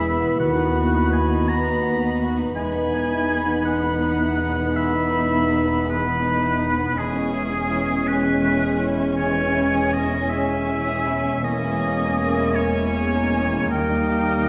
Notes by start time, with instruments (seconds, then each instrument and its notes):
Already playing: double bass section E1, cello section E2, harp E3 B3 G#4 G#5, french horn section G#3 E4, viola section B3, clarinet G#4, oboe E5, flute B5, violin section B5
0.03 violin section E4, harp B4
0.21 violin section B3
0.37 double bass section D#2, harp D#3, timpani D#3, violin section B3, clarinet F#4, oboe F#5, flute B5
0.41 cello section D#2, french horn section B3
0.56 violin section D#4
0.75 harp B3, violin section F#4
0.93 violin section D#4
1.12 violin section B3, harp F#4, oboe G#5
1.31 violin section D#4
1.48 french horn section D#4, violin section F#4, harp B4, oboe A#5
1.68 violin section D#4
1.83 violin section B3, harp F#5
2.03 violin section D#4
2.19 violin section F#4, harp B4
2.40 violin section D#4
2.54 double bass section E1, cello section E2, harp E3, violin section G#3 B5, viola section B3, french horn section B3 D#4, clarinet D#4, oboe G#5, flute B5
2.75 violin section B3
2.92 harp D#4, violin section D#4
3.11 violin section E4
3.28 violin section D#4, harp B4
3.48 violin section B3
3.64 violin section G#3, harp D#5, oboe F#5
3.83 violin section B3
4.01 violin section D#4, harp B5
4.19 violin section E4
4.37 violin section D#4, harp D#5
4.56 violin section B3
4.72 violin section G#3, harp B3, clarinet D#4, oboe E5, flute B5
4.93 violin section B3
5.10 violin section D#4, harp D#4
5.31 violin section E4
5.49 violin section D#4
5.67 violin section B3
5.87 violin section G#3, clarinet D#4, oboe B4, harp D#5
5.92 flute B5
6.05 violin section B3
6.25 violin section D#4, harp B5
6.42 violin section E4
6.59 violin section D#4, harp D#5
6.79 violin section B3
6.97 double bass section E1, cello section E2, harp E3, violin section G#3, french horn section G#3 C#4, viola section C#4, clarinet C#4, oboe G#4, flute G#5
7.02 violin section G#5
7.15 violin section C#4
7.33 harp C#4, violin section E4
7.52 violin section G#4
7.70 violin section E4, harp C#5
7.89 violin section C#4
8.07 violin section G#3, harp G#4, oboe B4
8.25 violin section C#4
8.43 violin section E4, harp C#6
8.62 violin section G#4
8.80 violin section E4, harp C#5
8.99 violin section C#4
9.16 harp E3, violin section G#3, clarinet C#4, oboe C#5, flute G#5
9.34 violin section C#4
9.55 violin section E4
9.73 violin section G#4
9.93 violin section E4, harp C#5, oboe D#5
10.12 violin section C#4
10.29 violin section G#3, clarinet C#4, harp G#4, oboe E5, flute G#5
10.47 violin section C#4
10.66 violin section E4, harp C#6
10.88 violin section G#4
11.04 violin section E4, harp C#5
11.26 violin section C#4
11.41 double bass section E1, cello section E2, harp E3, french horn section G#3 A#3, clarinet A#3, viola section C#4, violin section C#4, oboe D#5, flute G#5
11.45 violin section G#5
11.61 violin section E4
11.79 harp C#4, violin section G#4
11.99 violin section A#4
12.17 violin section G#4, harp A#4
12.37 violin section E4
12.55 clarinet A#3, violin section C#4, oboe C#5, harp C#5, flute G#5
12.76 violin section E4
12.93 violin section G#4, harp A#5
13.15 violin section A#4
13.33 violin section G#4, harp C#5
13.53 violin section E4
13.70 cello section D#2, double bass section D#2, harp D#3, french horn section G3, clarinet A#3, violin section A#3 G5, viola section D#4, oboe A#4, flute G5
13.91 violin section D#4
14.10 harp D#4, violin section G4
14.29 violin section A#4